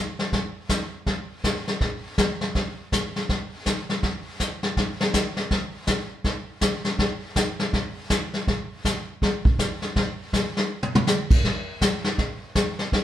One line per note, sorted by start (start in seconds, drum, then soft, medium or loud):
0.19 snare soft
0.32 brush sweep soft
0.32 kick soft
0.32 snare soft
0.69 kick soft
0.69 snare medium
0.69 hi-hat pedal soft
1.06 brush sweep soft
1.06 kick soft
1.06 snare soft
1.44 kick soft
1.44 snare medium
1.44 hi-hat pedal medium
1.68 snare soft
1.81 brush sweep soft
1.81 kick soft
1.81 snare soft
2.18 kick soft
2.18 snare medium
2.18 hi-hat pedal medium
2.41 snare soft
2.55 brush sweep soft
2.55 kick soft
2.55 snare soft
2.92 kick soft
2.92 snare medium
2.92 hi-hat pedal medium
3.16 snare soft
3.29 brush sweep medium
3.29 kick soft
3.29 snare soft
3.66 kick soft
3.66 snare medium
3.66 hi-hat pedal medium
3.89 snare soft
4.03 brush sweep medium
4.03 kick soft
4.03 snare soft
4.40 kick soft
4.40 snare medium
4.40 hi-hat pedal soft
4.63 snare soft
4.77 brush sweep medium
4.77 kick soft
4.77 snare soft
5.01 snare medium
5.14 kick soft
5.14 snare medium
5.14 hi-hat pedal medium
5.37 snare soft
5.51 brush sweep soft
5.51 kick soft
5.51 snare soft
5.87 kick soft
5.87 snare medium
5.87 hi-hat pedal medium
6.24 brush sweep soft
6.24 kick soft
6.24 snare soft
6.61 kick soft
6.61 snare medium
6.61 hi-hat pedal medium
6.85 snare soft
6.99 brush sweep soft
6.99 kick soft
6.99 snare soft
7.36 kick soft
7.36 snare medium
7.36 hi-hat pedal medium
7.59 snare soft
7.73 brush sweep medium
7.73 kick soft
7.73 snare soft
8.10 kick soft
8.10 snare medium
8.10 hi-hat pedal medium
8.34 snare soft
8.47 brush sweep soft
8.47 kick soft
8.47 snare soft
8.85 kick soft
8.85 snare medium
8.85 hi-hat pedal medium
9.22 brush sweep medium
9.22 kick soft
9.22 snare soft
9.45 kick soft
9.59 kick soft
9.59 snare medium
9.59 hi-hat pedal medium
9.82 snare soft
9.96 brush sweep medium
9.96 kick soft
9.96 snare soft
10.33 kick soft
10.33 snare medium
10.33 hi-hat pedal soft
10.57 snare soft
10.83 mid tom medium
10.95 mid tom medium
11.07 snare medium
11.07 hi-hat pedal medium
11.31 kick medium
11.31 crash medium
11.44 brush sweep soft
11.44 kick soft
11.44 snare soft
11.81 kick soft
11.81 snare medium
11.81 hi-hat pedal medium
12.04 snare soft
12.18 brush sweep medium
12.18 kick soft
12.18 snare soft
12.55 kick soft
12.55 snare medium
12.55 hi-hat pedal medium
12.79 snare soft
12.92 brush sweep medium
12.92 kick soft
12.92 snare soft